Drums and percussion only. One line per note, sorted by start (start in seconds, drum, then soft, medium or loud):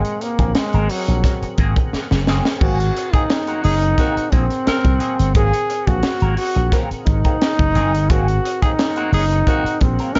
0.05 closed hi-hat medium
0.21 closed hi-hat medium
0.39 kick medium
0.39 closed hi-hat medium
0.55 snare loud
0.55 closed hi-hat medium
0.73 closed hi-hat soft
0.89 open hi-hat medium
1.08 closed hi-hat soft
1.24 kick medium
1.24 snare soft
1.24 closed hi-hat loud
1.43 closed hi-hat soft
1.58 kick medium
1.58 closed hi-hat medium
1.76 kick medium
1.76 closed hi-hat soft
1.93 snare soft
2.11 snare medium
2.27 snare medium
2.45 snare medium
2.61 kick loud
2.61 crash medium
2.80 closed hi-hat medium
2.97 closed hi-hat medium
3.14 kick medium
3.14 closed hi-hat medium
3.30 snare loud
3.30 closed hi-hat medium
3.47 closed hi-hat soft
3.64 open hi-hat medium
3.82 closed hi-hat soft
3.98 kick medium
3.98 snare soft
3.98 closed hi-hat medium
4.17 closed hi-hat soft
4.32 kick medium
4.32 closed hi-hat medium
4.50 closed hi-hat soft
4.67 snare loud
4.67 closed hi-hat medium
4.85 kick loud
4.85 closed hi-hat soft
5.00 closed hi-hat medium
5.19 closed hi-hat medium
5.35 kick loud
5.35 closed hi-hat medium
5.54 closed hi-hat medium
5.70 closed hi-hat medium
5.87 kick medium
5.87 closed hi-hat medium
6.03 snare loud
6.03 closed hi-hat medium
6.20 closed hi-hat soft
6.37 open hi-hat medium
6.55 closed hi-hat soft
6.72 kick medium
6.72 snare soft
6.72 closed hi-hat loud
6.91 closed hi-hat soft
7.06 kick medium
7.06 closed hi-hat medium
7.24 kick medium
7.24 closed hi-hat soft
7.41 snare loud
7.41 closed hi-hat medium
7.59 kick loud
7.59 closed hi-hat soft
7.75 closed hi-hat medium
7.95 closed hi-hat medium
8.10 kick loud
8.10 closed hi-hat loud
8.28 closed hi-hat medium
8.45 closed hi-hat medium
8.62 kick medium
8.62 closed hi-hat medium
8.79 snare loud
8.79 closed hi-hat medium
8.96 closed hi-hat soft
9.13 open hi-hat medium
9.31 closed hi-hat soft
9.47 kick medium
9.47 closed hi-hat medium
9.66 closed hi-hat soft
9.81 kick medium
9.81 closed hi-hat medium
9.99 closed hi-hat soft
10.15 snare loud
10.15 closed hi-hat medium